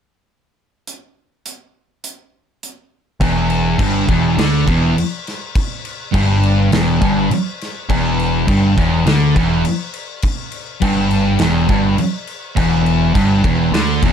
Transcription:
0.87 closed hi-hat medium
1.46 closed hi-hat medium
2.04 closed hi-hat medium
2.63 closed hi-hat medium
3.20 3.75 E1 loud
3.20 3.78 E2 loud
3.20 kick loud
3.20 crash medium
3.50 crash medium
3.78 4.06 G1 loud
3.78 4.06 G2 loud
3.78 kick loud
3.78 crash medium
4.07 4.36 E1 loud
4.07 4.36 E2 loud
4.07 kick loud
4.07 crash medium
4.37 4.65 D2 loud
4.37 4.66 D3 loud
4.37 snare loud
4.37 crash medium
4.65 4.94 E1 medium
4.65 4.94 E2 loud
4.65 kick loud
4.65 crash medium
4.98 crash medium
5.27 snare soft
5.27 crash medium
5.55 kick loud
5.55 crash medium
5.85 crash medium
6.13 6.68 G1 medium
6.13 6.71 G2 loud
6.13 kick loud
6.13 crash medium
6.43 crash medium
6.72 6.99 E1 loud
6.72 7.01 E2 loud
6.72 snare loud
6.72 crash medium
7.01 7.29 G1 loud
7.01 7.29 G2 loud
7.01 kick loud
7.01 crash medium
7.31 muted distorted electric guitar stroke medium
7.31 muted overdriven electric guitar stroke medium
7.31 crash medium
7.61 snare soft
7.61 crash medium
7.89 8.43 E1 loud
7.89 8.47 E2 loud
7.89 kick loud
7.89 crash medium
8.20 crash medium
8.47 8.75 G1 medium
8.47 8.76 G2 loud
8.47 kick loud
8.47 crash medium
8.76 9.04 E1 loud
8.76 9.05 E2 loud
8.76 kick loud
8.76 crash medium
9.05 9.33 D2 loud
9.05 9.34 D3 loud
9.05 snare loud
9.05 crash medium
9.35 9.62 E1 loud
9.35 9.64 E2 loud
9.35 kick loud
9.35 crash medium
9.65 crash medium
9.94 crash medium
10.22 kick loud
10.22 crash medium
10.52 crash medium
10.81 11.36 G1 medium
10.81 11.38 G2 loud
10.81 kick loud
10.81 crash medium
11.11 crash medium
11.39 11.67 E1 loud
11.39 11.68 E2 loud
11.39 snare loud
11.39 crash medium
11.69 11.96 G1 loud
11.69 11.98 G2 loud
11.69 kick loud
11.69 crash medium
11.98 muted overdriven electric guitar stroke medium
11.98 muted distorted electric guitar stroke medium
11.98 crash medium
12.27 crash medium
12.57 13.11 E1 medium
12.57 13.14 E2 loud
12.57 kick loud
12.57 crash medium
12.86 crash medium
13.15 13.42 G1 loud
13.15 13.44 G2 loud
13.15 kick loud
13.15 crash medium
13.44 13.71 E1 medium
13.44 13.73 E2 loud
13.44 kick loud
13.44 crash medium
13.72 14.00 D2 loud
13.72 14.02 D3 loud
13.72 snare loud
13.72 crash medium
14.03 14.13 E1 loud
14.03 14.13 E2 loud
14.03 kick loud
14.03 crash medium

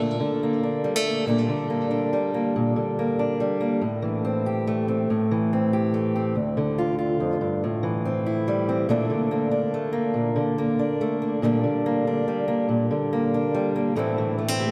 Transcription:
0.00 0.21 A#2 soft
0.00 0.19 D3 soft
0.00 0.43 A#3 soft
0.00 0.63 D4 soft
0.20 1.26 D3 soft
0.43 1.06 A#3 soft
0.63 1.29 D4 soft
0.84 0.96 G3 soft
0.96 1.27 A3 soft
1.07 1.28 A#3 soft
1.27 1.48 A#2 soft
1.27 1.47 D3 soft
1.27 2.12 G3 soft
1.27 1.70 A#3 soft
1.27 1.90 D4 soft
1.49 2.75 D3 soft
1.70 2.33 A#3 soft
1.91 3.18 D4 soft
2.13 3.39 G3 soft
2.34 2.53 A#3 soft
2.56 2.77 A#2 medium
2.76 3.82 D3 soft
2.99 3.59 A#3 soft
3.19 3.82 D4 soft
3.40 3.82 G3 soft
3.61 3.79 A#3 soft
3.81 5.09 A2 medium
4.02 5.06 E3 soft
4.25 4.87 C4 soft
4.46 5.07 G4 soft
4.67 5.76 A3 soft
4.88 5.07 C4 soft
5.10 6.37 A2 medium
5.31 6.34 E3 soft
5.53 6.14 C4 soft
5.73 6.34 G4 soft
5.94 6.34 A3 soft
6.16 6.34 C4 soft
6.35 7.20 D2 soft
6.57 7.63 D3 soft
6.78 6.97 F4 medium
6.99 7.60 F4 soft
7.20 7.41 F2 medium
7.41 7.63 G2 soft
7.64 8.88 A2 medium
7.83 8.87 E3 medium
8.05 8.68 C4 soft
8.26 8.87 E4 soft
8.48 8.89 G3 soft
8.69 8.87 C4 soft
8.89 9.10 A#2 medium
8.89 9.09 D3 soft
8.89 9.73 A3 soft
8.89 9.31 A#3 soft
8.89 9.51 D4 medium
9.10 10.35 D3 medium
9.31 9.92 A#3 medium
9.51 10.79 D4 soft
9.74 10.14 A3 soft
9.93 10.58 A#3 soft
10.14 10.36 A#2 medium
10.36 11.42 D3 medium
10.58 11.21 A#3 medium
10.79 11.45 D4 soft
11.01 11.41 A3 soft
11.22 11.44 A#3 soft
11.42 11.64 A#2 medium
11.42 11.63 D3 soft
11.42 12.27 G3 soft
11.42 11.86 A#3 soft
11.42 12.06 D4 medium
11.64 12.90 D3 soft
11.86 12.47 A#3 soft
12.07 13.33 D4 soft
12.28 13.53 G3 soft
12.48 12.67 A#3 medium
12.69 12.90 A#2 medium
12.91 13.96 D3 medium
13.13 13.74 A#3 soft
13.34 13.97 D4 medium
13.54 13.96 G3 soft
13.76 13.94 A#3 soft
13.96 14.71 A2 medium
13.96 14.18 E3 medium
13.96 14.38 A3 medium
13.96 14.38 C4 soft
13.96 14.60 E4 medium
14.18 14.71 E3 medium
14.38 14.48 A3 soft
14.48 14.71 C4 soft
14.60 14.71 G4 soft

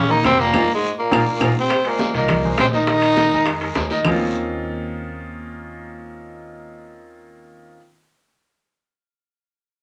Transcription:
0.00 0.21 A#1 medium
0.00 0.11 C#3 medium
0.00 0.12 C#4 loud
0.09 0.24 D#3 medium
0.09 0.22 A#3 medium
0.09 0.25 D#4 loud
0.09 0.22 A#4 medium
0.09 0.22 A#5 medium
0.09 high bongo soft
0.09 high conga soft
0.24 0.51 F1 loud
0.24 0.43 C3 medium
0.24 0.49 G3 medium
0.24 0.41 C4 loud
0.24 0.49 G4 medium
0.24 0.49 G5 medium
0.24 high bongo soft
0.24 low bongo medium
0.24 high conga medium
0.24 high timbale medium
0.24 low timbale medium
0.24 short guiro medium
0.24 claves medium
0.39 0.73 A#2 medium
0.39 0.73 A#3 loud
0.39 high bongo soft
0.39 high conga medium
0.39 short guiro medium
0.53 0.64 F2 loud
0.53 0.63 D#4 medium
0.53 0.63 F4 loud
0.53 0.63 G#4 loud
0.53 low bongo loud
0.53 high conga loud
0.53 high timbale medium
0.53 long guiro loud
0.53 claves loud
0.74 0.92 G#2 medium
0.74 0.92 G#3 medium
0.99 1.53 A#2 medium
0.99 1.53 A#3 medium
1.11 1.23 A#1 medium
1.11 1.21 F4 loud
1.11 1.21 G#4 loud
1.11 1.22 A#4 loud
1.11 low bongo loud
1.11 high conga loud
1.11 high timbale loud
1.11 long guiro loud
1.11 claves loud
1.41 1.52 A#1 loud
1.41 1.51 F4 loud
1.41 1.51 G#4 loud
1.41 1.51 A#4 loud
1.41 low bongo medium
1.41 high conga medium
1.41 high timbale loud
1.41 long guiro loud
1.41 claves loud
1.59 1.88 C3 medium
1.59 1.90 C4 medium
1.70 high bongo medium
1.70 high conga soft
1.70 high timbale medium
1.70 long guiro medium
1.70 claves medium
1.85 2.15 A#2 medium
1.85 2.09 G#3 medium
1.85 2.16 A#3 medium
1.85 2.10 G#4 medium
1.85 2.10 C5 medium
1.85 high conga soft
1.85 high timbale medium
1.99 high bongo medium
1.99 high conga loud
1.99 low timbale medium
1.99 short guiro medium
2.14 2.55 C2 medium
2.14 2.56 A#2 medium
2.14 2.39 D#3 medium
2.14 2.57 A#3 medium
2.14 2.39 D#4 medium
2.14 2.39 D#5 medium
2.14 high conga soft
2.14 high timbale medium
2.14 short guiro medium
2.28 high bongo medium
2.28 high conga soft
2.28 low conga medium
2.28 high timbale medium
2.28 long guiro medium
2.28 claves medium
2.44 2.68 G#3 medium
2.44 2.68 G#4 medium
2.44 2.69 C5 medium
2.44 high conga soft
2.44 low conga medium
2.58 3.26 A#1 medium
2.58 2.66 C3 medium
2.58 2.66 C4 loud
2.58 high bongo medium
2.58 low bongo medium
2.58 high conga medium
2.58 high timbale medium
2.58 low timbale medium
2.58 short guiro medium
2.58 claves medium
2.73 2.85 D#3 medium
2.73 3.72 D#3 medium
2.73 2.85 D#4 medium
2.73 3.73 D#4 loud
2.73 2.85 D#5 medium
2.73 high conga medium
2.73 short guiro medium
2.87 3.12 D#3 medium
2.87 3.12 D#4 medium
2.87 3.13 D#5 medium
2.87 high bongo medium
2.87 high conga soft
2.87 high timbale medium
2.87 long guiro medium
3.02 high bongo soft
3.02 high conga soft
3.02 high timbale medium
3.02 claves medium
3.17 3.30 D#3 medium
3.17 3.30 D#4 medium
3.17 3.30 D#5 medium
3.17 high bongo medium
3.17 high conga loud
3.17 high timbale medium
3.17 low timbale medium
3.17 short guiro medium
3.31 3.73 F2 medium
3.31 3.57 G#3 medium
3.31 3.57 G#4 medium
3.31 3.57 A#4 medium
3.31 high conga soft
3.31 short guiro medium
3.46 high bongo medium
3.46 high conga soft
3.46 high timbale medium
3.46 long guiro medium
3.46 claves medium
3.61 3.86 G#3 medium
3.61 3.86 G#4 medium
3.61 3.86 A#4 medium
3.61 high bongo soft
3.61 high conga soft
3.61 high timbale medium
3.75 4.02 D#2 medium
3.75 high bongo medium
3.75 low bongo medium
3.75 high conga soft
3.75 low timbale medium
3.75 short guiro medium
3.90 4.03 D#3 medium
3.90 4.03 D#4 medium
3.90 4.03 D#5 medium
3.90 high bongo soft
3.90 high conga medium
3.90 short guiro medium
4.05 7.75 D#2 medium
4.05 7.76 D#3 medium
4.05 7.77 A#3 medium
4.05 7.77 C4 medium
4.05 7.77 C#4 medium
4.05 7.77 D#4 medium
4.05 7.78 F4 loud
4.05 low bongo loud
4.05 low conga medium
4.05 low timbale medium
4.05 long guiro medium
4.05 claves loud

